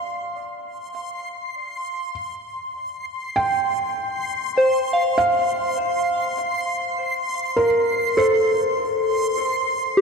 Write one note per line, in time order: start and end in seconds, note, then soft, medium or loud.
0.00 2.11 F5 medium
0.00 10.01 C6 medium
3.36 5.22 G5 medium
4.58 6.75 C5 medium
4.93 7.08 F5 soft
5.18 7.65 F5 medium
7.56 8.19 A#4 medium
8.17 10.01 A4 medium
8.17 10.01 C5 medium
9.97 10.01 G4 soft